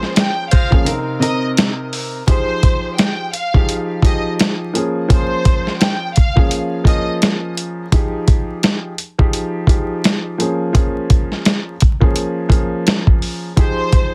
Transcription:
0.00 0.44 F3 medium
0.00 0.44 A#3 medium
0.00 0.45 C#4 medium
0.00 0.45 G#4 loud
0.00 0.12 C5 loud
0.00 snare soft
0.16 0.48 G5 medium
0.16 snare loud
0.16 closed hi-hat medium
0.51 0.74 G#3 loud
0.51 0.74 F4 loud
0.51 0.74 C5 loud
0.51 0.83 F5 loud
0.51 kick medium
0.51 closed hi-hat medium
0.71 0.86 F3 loud
0.71 0.86 A#3 medium
0.71 0.87 C#4 medium
0.71 0.87 G#4 loud
0.71 kick medium
0.85 1.18 C3 medium
0.85 1.19 C4 medium
0.85 1.19 D#4 medium
0.85 1.20 A#4 loud
0.85 closed hi-hat medium
1.20 2.20 C3 medium
1.20 2.20 C4 medium
1.20 2.21 D#4 medium
1.20 2.21 A#4 loud
1.20 1.40 D#5 medium
1.20 closed hi-hat medium
1.57 snare loud
1.57 closed hi-hat medium
1.93 open hi-hat medium
2.27 3.26 F3 medium
2.27 3.27 D#4 medium
2.27 3.27 G4 medium
2.27 3.28 G#4 loud
2.27 2.94 C5 loud
2.27 kick loud
2.27 closed hi-hat medium
2.63 kick medium
2.63 closed hi-hat medium
2.98 3.30 G5 medium
2.98 snare loud
2.98 closed hi-hat medium
3.33 3.66 F5 medium
3.33 closed hi-hat medium
3.54 4.00 F3 medium
3.54 4.01 D#4 medium
3.54 4.01 G4 medium
3.54 4.02 G#4 loud
3.54 kick medium
3.69 closed hi-hat medium
4.02 4.72 F3 medium
4.02 4.74 D#4 medium
4.02 4.75 G4 medium
4.02 4.75 G#4 loud
4.02 4.23 D#5 medium
4.02 kick medium
4.02 closed hi-hat medium
4.39 snare loud
4.39 closed hi-hat medium
4.73 5.07 F3 medium
4.73 5.08 A#3 medium
4.73 5.08 C#4 medium
4.73 5.09 G#4 loud
4.73 closed hi-hat medium
5.08 6.08 F3 medium
5.08 6.09 A#3 medium
5.08 6.09 C#4 medium
5.08 6.10 G#4 loud
5.08 5.77 C5 loud
5.08 kick loud
5.08 closed hi-hat medium
5.45 kick medium
5.45 closed hi-hat medium
5.67 snare soft
5.80 6.12 G5 medium
5.80 snare loud
5.80 closed hi-hat medium
6.16 6.48 F5 medium
6.16 kick medium
6.16 closed hi-hat medium
6.36 6.82 F3 medium
6.36 6.83 A#3 medium
6.36 6.83 C#4 medium
6.36 6.84 G#4 loud
6.36 kick loud
6.51 closed hi-hat medium
6.84 7.84 F3 loud
6.84 7.85 A#3 medium
6.84 7.85 C#4 medium
6.84 7.86 G#4 loud
6.84 7.05 D#5 medium
6.84 kick medium
6.84 closed hi-hat medium
7.22 snare loud
7.22 closed hi-hat medium
7.57 closed hi-hat medium
7.92 8.91 F3 medium
7.92 8.92 D#4 medium
7.92 8.92 G4 medium
7.92 8.93 G#4 loud
7.92 kick loud
7.92 closed hi-hat medium
8.28 kick medium
8.28 closed hi-hat medium
8.63 snare loud
8.63 closed hi-hat medium
8.98 closed hi-hat medium
9.18 9.65 F3 medium
9.18 9.66 D#4 medium
9.18 9.66 G4 medium
9.18 9.67 G#4 loud
9.18 kick loud
9.33 closed hi-hat medium
9.67 10.37 F3 medium
9.67 10.39 D#4 medium
9.67 10.40 G4 medium
9.67 10.40 G#4 medium
9.67 kick medium
9.67 closed hi-hat medium
10.04 snare loud
10.04 closed hi-hat medium
10.38 10.71 F3 medium
10.38 10.72 A#3 medium
10.38 10.73 C#4 medium
10.38 10.73 G#4 loud
10.38 closed hi-hat medium
10.73 11.73 F3 medium
10.73 11.73 A#3 medium
10.73 11.74 C#4 medium
10.73 11.74 G#4 medium
10.73 kick loud
10.73 closed hi-hat medium
11.10 kick medium
11.10 closed hi-hat medium
11.32 snare soft
11.45 snare loud
11.45 closed hi-hat medium
11.80 kick medium
11.80 closed hi-hat medium
12.00 12.47 F3 medium
12.00 12.48 A#3 medium
12.00 12.48 C#4 medium
12.00 12.49 G#4 loud
12.00 kick medium
12.16 closed hi-hat medium
12.49 13.49 F3 loud
12.49 13.49 A#3 medium
12.49 13.50 C#4 medium
12.49 13.50 G#4 loud
12.49 kick medium
12.49 closed hi-hat medium
12.87 snare loud
12.87 closed hi-hat medium
13.07 kick medium
13.22 open hi-hat medium
13.56 14.14 F3 medium
13.56 14.14 D#4 medium
13.56 14.14 G4 medium
13.56 14.14 G#4 loud
13.56 14.14 C5 loud
13.56 kick loud
13.56 closed hi-hat medium
13.92 kick medium
13.92 closed hi-hat medium

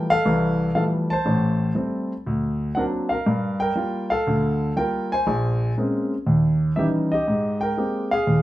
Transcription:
0.00 0.12 E3 medium
0.00 0.12 F3 soft
0.00 0.12 G3 soft
0.00 0.12 A3 medium
0.00 0.12 G5 medium
0.10 0.72 A4 medium
0.10 0.74 F5 loud
0.26 0.69 C2 medium
0.26 0.69 E3 medium
0.75 1.11 E3 medium
0.75 1.11 F3 soft
0.75 1.12 G3 soft
0.75 1.12 A3 medium
0.75 0.85 A4 medium
0.75 0.83 F5 medium
1.10 1.73 C5 medium
1.10 1.72 A5 medium
1.25 1.70 A1 medium
1.25 1.69 A2 medium
1.75 2.12 G3 soft
1.75 2.12 A3 soft
1.75 2.12 C4 medium
2.27 2.70 D2 medium
2.75 3.12 F#3 medium
2.75 3.12 A#3 soft
2.75 3.12 C4 soft
2.75 3.13 D4 medium
2.75 2.85 A#4 medium
2.75 2.83 F#5 medium
3.09 3.58 A#4 medium
3.09 3.62 F5 medium
3.26 3.70 G2 medium
3.60 4.08 A#4 medium
3.60 4.12 G5 medium
3.75 4.12 G3 medium
3.75 4.12 A#3 soft
3.75 4.13 F4 medium
4.10 4.73 A4 medium
4.10 4.72 F5 medium
4.27 4.70 D2 medium
4.27 4.71 D3 medium
4.76 5.12 G3 soft
4.76 5.13 A#3 soft
4.76 5.13 F4 medium
4.76 5.09 A#4 medium
4.76 5.12 G5 medium
5.12 5.74 C5 medium
5.12 5.73 G#5 medium
5.27 5.70 A#1 medium
5.78 6.13 G#3 medium
5.78 6.13 A#3 soft
5.78 6.13 C4 soft
5.78 6.14 C#4 medium
6.27 6.70 D#2 medium
6.76 7.13 E3 soft
6.76 7.13 G3 soft
6.76 7.13 C#4 soft
6.76 7.13 D#4 medium
6.76 6.86 G4 medium
6.76 6.84 E5 medium
7.12 7.59 G4 medium
7.12 7.58 D#5 medium
7.28 7.71 G#2 medium
7.61 8.09 A#4 medium
7.61 8.07 G5 medium
7.77 8.13 G#3 medium
7.77 8.13 A#3 soft
7.77 8.13 C4 soft
7.77 8.14 G4 medium
8.11 8.42 G#4 medium
8.11 8.42 F5 medium
8.27 8.42 D#2 medium

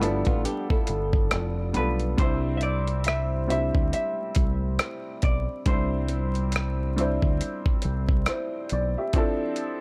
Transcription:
0.00 0.22 G1 loud
0.00 1.17 F3 medium
0.00 1.73 G3 loud
0.00 1.74 B3 medium
0.00 0.25 B3 medium
0.00 1.75 D4 medium
0.00 0.25 E4 medium
0.00 1.77 F4 medium
0.00 0.03 A4 loud
0.00 1.17 A4 medium
0.00 cross-stick soft
0.00 closed hi-hat medium
0.25 0.44 A1 medium
0.25 0.44 B3 medium
0.25 0.44 F4 medium
0.25 kick medium
0.25 closed hi-hat soft
0.45 0.69 D4 medium
0.45 0.69 G4 medium
0.45 closed hi-hat medium
0.70 1.97 E4 medium
0.70 1.97 A4 medium
0.70 kick loud
0.87 1.29 G1 medium
0.87 closed hi-hat medium
1.13 kick medium
1.31 1.73 F1 loud
1.31 cross-stick loud
1.31 closed hi-hat medium
1.73 2.16 B1 medium
1.73 2.05 G3 medium
1.73 2.05 B3 medium
1.73 2.06 D4 medium
1.73 2.06 F4 medium
1.73 2.19 B4 medium
1.73 closed hi-hat medium
1.77 2.07 A4 medium
2.00 closed hi-hat soft
2.18 3.70 C2 loud
2.18 3.03 G3 loud
2.18 3.03 C4 loud
2.18 3.04 D4 medium
2.18 3.04 E4 loud
2.18 2.57 C5 loud
2.18 kick loud
2.18 closed hi-hat medium
2.22 3.05 C5 loud
2.57 2.62 E5 medium
2.57 closed hi-hat medium
2.63 3.06 D5 loud
2.87 closed hi-hat soft
3.04 3.49 E5 loud
3.04 cross-stick loud
3.04 closed hi-hat medium
3.47 4.63 G3 medium
3.47 4.64 C4 medium
3.47 4.64 D4 medium
3.47 4.65 E4 medium
3.47 3.93 E5 loud
3.47 closed hi-hat medium
3.52 4.65 G4 medium
3.75 3.92 D2 medium
3.75 kick medium
3.93 5.23 E5 loud
3.93 closed hi-hat medium
4.35 4.77 C2 medium
4.35 kick medium
4.35 closed hi-hat medium
4.79 cross-stick loud
4.79 closed hi-hat medium
5.22 5.47 B1 medium
5.22 5.64 D5 medium
5.22 kick loud
5.22 closed hi-hat medium
5.66 7.18 C2 loud
5.66 6.51 G3 medium
5.66 6.51 C4 medium
5.66 6.52 D4 medium
5.66 6.52 E4 medium
5.66 8.67 C5 medium
5.66 kick loud
5.66 closed hi-hat medium
5.70 6.53 C5 loud
6.09 closed hi-hat medium
6.35 closed hi-hat soft
6.52 cross-stick loud
6.52 closed hi-hat medium
6.96 8.12 G3 medium
6.96 8.12 C4 medium
6.96 8.13 D4 medium
6.96 7.85 E4 medium
6.96 closed hi-hat medium
7.00 7.85 C5 medium
7.22 7.39 D2 medium
7.22 kick medium
7.41 closed hi-hat medium
7.66 kick loud
7.82 8.25 C2 medium
7.82 closed hi-hat medium
8.09 kick medium
8.26 8.69 E4 medium
8.26 8.69 C5 medium
8.26 cross-stick loud
8.26 closed hi-hat medium
8.69 8.95 B1 medium
8.69 8.96 D5 medium
8.69 closed hi-hat medium
8.98 9.38 G4 medium
8.98 9.38 E5 medium
9.13 9.81 F3 loud
9.13 9.81 C4 loud
9.13 9.81 D4 loud
9.13 9.81 E4 loud
9.13 kick loud
9.13 closed hi-hat medium
9.18 9.81 A4 loud
9.56 closed hi-hat medium

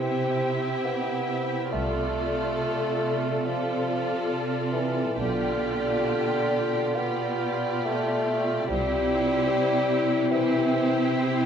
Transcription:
0.00 1.68 C3 soft
0.00 0.87 C4 medium
0.00 1.68 E4 soft
0.00 1.68 G4 soft
0.00 1.69 G4 soft
0.00 1.68 C5 soft
0.00 1.68 E5 soft
0.86 1.71 B3 medium
1.71 2.55 C2 soft
1.71 5.13 C3 soft
1.71 3.47 A3 medium
1.71 3.42 F4 soft
1.71 5.00 F4 soft
1.71 3.44 A4 soft
1.71 5.00 D5 soft
1.71 3.44 D5 soft
3.45 4.30 F3 medium
3.45 5.14 F4 soft
3.45 5.15 A4 soft
3.45 5.14 D5 soft
4.72 5.20 E3 medium
5.16 6.00 B1 soft
5.16 8.66 B2 soft
5.16 6.97 D3 medium
5.16 9.47 F4 soft
5.16 6.94 F4 medium
5.16 6.95 G4 soft
5.16 6.93 D5 soft
5.16 8.66 D5 soft
6.95 7.86 B3 medium
6.95 8.66 F4 soft
6.95 8.66 G4 soft
6.95 8.65 D5 medium
7.85 8.66 A3 medium
8.67 9.48 C2 soft
8.67 11.46 C3 medium
8.67 10.33 G3 medium
8.67 10.32 E4 medium
8.67 11.46 C5 medium
8.71 10.30 G4 soft
8.71 10.33 C5 medium
9.51 11.46 E4 soft
10.31 11.14 E3 medium
10.31 11.46 E4 medium
10.31 11.46 G4 soft
10.31 11.46 C5 medium

